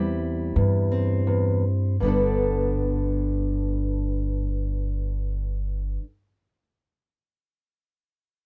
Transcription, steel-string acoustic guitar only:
0.00 0.55 E2 medium
0.00 1.95 G3 soft
0.00 0.90 C4 soft
0.00 1.96 E4 soft
0.56 1.26 E2 soft
0.92 1.96 C4 soft
1.27 1.63 E2 soft
2.00 5.99 G2 soft
2.00 6.01 D3 soft
2.00 6.03 B3 soft
2.06 6.05 D4 soft
2.06 6.07 A4 soft

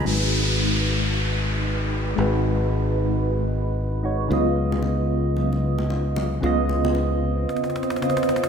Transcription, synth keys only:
0.00 2.13 G#3 medium
0.00 0.19 B5 medium
0.05 2.14 D#4 medium
0.05 2.15 F#4 medium
0.05 2.15 B4 medium
2.16 3.99 G#3 medium
2.16 4.00 D#4 medium
2.16 4.01 F#4 medium
2.21 4.02 B4 medium
4.03 4.30 G#3 medium
4.03 4.30 D#4 medium
4.03 4.31 F#4 medium
4.03 4.31 C#5 medium
4.28 6.38 C#3 medium
4.28 6.39 B3 medium
4.28 6.39 F4 medium
4.33 6.40 D#5 medium
6.40 7.98 C#3 medium
6.40 7.99 B3 medium
6.40 8.00 F4 medium
6.46 8.00 D#5 medium
8.01 8.49 C#3 medium
8.01 8.49 B3 medium
8.01 8.49 F4 medium
8.01 8.49 D#5 medium

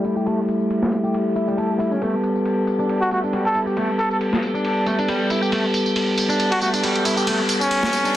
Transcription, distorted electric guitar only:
0.04 0.16 E4 medium
0.17 0.25 G4 medium
0.26 0.36 A3 medium
1.04 1.12 G4 medium
1.36 1.46 E4 medium
1.48 1.57 G3 medium
1.58 1.69 A4 medium
1.80 1.91 E4 medium
1.91 2.01 C#4 medium
2.02 2.12 A3 medium
2.79 3.10 D4 medium
3.11 3.22 A3 medium
3.23 3.32 D4 medium
3.33 3.54 G3 medium
3.55 3.67 E4 medium
3.67 3.75 G4 medium
3.77 3.87 A3 medium
4.55 4.85 D4 medium
4.86 4.97 A3 medium
4.99 5.07 D4 medium
5.08 5.29 G3 medium
5.30 5.42 E4 medium
5.42 5.50 G4 medium
5.52 5.62 A3 medium
6.29 6.60 D4 medium
6.61 6.72 A3 medium
6.73 6.82 D4 medium
6.83 7.04 G3 medium
7.05 7.17 E4 medium
7.17 7.25 G4 medium
7.27 7.37 A3 medium
8.05 8.16 D4 medium

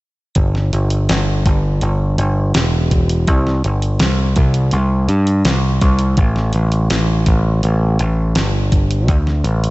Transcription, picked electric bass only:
0.36 0.70 G1 medium
0.73 1.07 G1 medium
1.10 1.44 G1 medium
1.46 1.80 G1 medium
1.82 2.16 G1 medium
2.18 2.52 G1 medium
2.55 3.28 E1 medium
3.28 3.62 C2 medium
3.65 3.98 G1 medium
4.01 4.34 C2 medium
4.36 4.70 C2 medium
4.73 5.07 C2 medium
5.08 5.42 G2 medium
5.45 5.79 C2 medium
5.81 6.15 C2 medium
6.18 6.52 A1 medium
6.54 6.88 A1 medium
6.90 7.24 A1 medium
7.27 7.61 A1 medium
7.64 7.97 A1 medium
8.00 8.33 A1 medium
8.36 9.08 G1 medium
9.09 9.42 D2 medium
9.44 9.70 A1 medium

